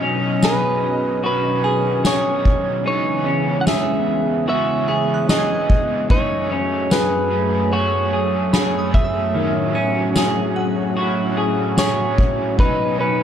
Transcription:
Already playing: B2 F#3 C#4 D#4 D#5 G#5
0.02 C#4
0.43 G#4 B4, snare, ride, tambourine
1.23 D#3 F#3 C#4 F#4 B4, ride
1.28 D#4
1.64 G#4 G#5
2.03 D#3 F#3 C#4 G#4 C#5, snare, tambourine
2.08 D#4
2.45 kick
2.84 C#3 E3 G#3 B3 D#4, ride
2.88 B3 C#4 C#5
2.92 G#4
3.26 C#4
3.61 F#5
3.67 G#4 E5, snare, ride, tambourine
4.46 E3 B3 C#4 F#4 E5, ride
4.51 G#4
4.88 G#4 C#6
5.14 F#6
5.27 E3 B3 C#4 G#4 D#5, snare, ride, tambourine
5.33 G#4
5.39 G#6
5.70 kick
6.09 F#2 C#3 F#3 A3 C#4 D#4 G#4 C#5, kick
6.51 C#4
6.91 G#4 B4, snare, tambourine
7.31 A3 C#4 G#4
7.36 F#3
7.71 F#3 A3 C#4 F#4 C#5, ride
7.76 G#4
8.13 G#4
8.52 F#3 A3 C#4 G#4 B5, snare, ride, tambourine
8.57 G#4
8.79 D#6
8.94 E5, kick
9.04 E6
9.32 A2 D#3 F#3 C#4 F#4, ride
9.38 C#4
9.75 C#4 G#5
10.16 G#4, snare, ride, tambourine
10.56 F#5
10.95 A2 F#3 C#4 F#4, ride
11.01 E4
11.37 G#4
11.76 A2 F#3 C#4 G#4 C#5, snare, ride, tambourine
11.81 E4
12.18 kick
12.56 B2 D#3 F#3 D#4 B4, kick, ride
12.61 F#3 C#4 D#4
12.99 C#4 B4

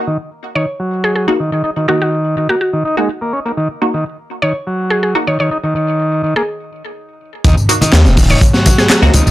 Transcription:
0.07 D#3
0.55 D#3 C#5
0.80 F#3
1.04 G#4
1.16 G#4
1.28 A#3 D#4 F#4
1.40 D#3
1.52 D#3
1.64 D#4
1.76 D#3
1.88 D#3 A#3 D#4 F#4
2.02 F#4
2.37 D#3
2.49 A#3 F#4
2.61 F#4
2.73 D#3
2.85 D#4
2.97 G#3 A#3 D#4 F#4
3.21 A#3
3.33 C#4
3.45 A#3
3.57 D#3
3.82 A#3 D#4 F#4
3.94 D#3
4.42 D#3 C#5
4.67 F#3
4.90 G#4
5.03 G#4
5.15 A#3 D#4 F#4
5.27 D#3 C#5
5.40 D#3 C#5
5.51 D#4
5.64 D#3
5.75 D#3
6.23 D#3
6.36 A#3 G#4
7.44 D#2 D#3, kick, closed hi-hat, tambourine, muted conga
7.57 tambourine
7.69 A#3 D#4 F#4, closed hi-hat, tambourine
7.81 D#3, closed hi-hat, tambourine, muted conga
7.92 D#2, snare, clap, closed hi-hat, tambourine
8.05 D#1, snare, tambourine
8.17 kick, open hi-hat, tambourine
8.30 D#3 C#5, tambourine, muted conga
8.41 kick, closed hi-hat, tambourine
8.53 F#3, snare, tambourine
8.66 kick, closed hi-hat, tambourine, muted conga
8.78 G#4, snare, tambourine
8.90 G#4, snare, clap, closed hi-hat, tambourine
9.02 C#2 A#3 D#4 F#4, snare, tambourine
9.14 C#2 D#3, closed hi-hat, tambourine, muted conga, high conga
9.26 D#1 D#3, tambourine, low conga

